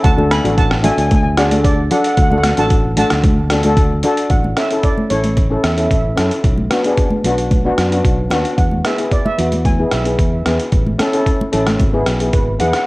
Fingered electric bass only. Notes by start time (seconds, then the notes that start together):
0.04 D2
0.44 A1
0.97 D2
2.18 D2
2.58 A1
3.12 D2
4.30 A1
5.11 A1
5.64 E2
5.91 A1
6.18 F#2
6.44 B1
7.24 B1
7.78 F#2
8.04 B1
8.31 D#2
8.58 E2
9.39 E2
9.93 B1
10.19 E2
10.46 E2
10.72 A1
11.53 A1
11.80 G#1
12.07 B1
12.33 G#1
12.60 E2